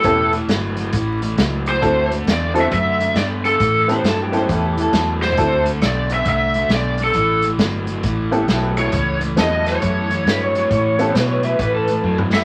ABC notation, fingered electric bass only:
X:1
M:4/4
L:1/8
Q:"Swing" 1/4=135
K:Amix
V:1 name="Fingered electric bass" clef=bass
E,,,2 G,,,2 A,,,2 C,,2 | D,,2 E,,2 F,,2 G,,2 | A,,2 G,,2 E,,2 E,,2 | D,,2 B,,,2 =C,,2 B,,,2 |
A,,,2 G,,,2 A,,,2 B,,,2 | C,,2 E,,2 F,,2 G,,2 | A,,2 B,,2 A,,2 F,,2 |]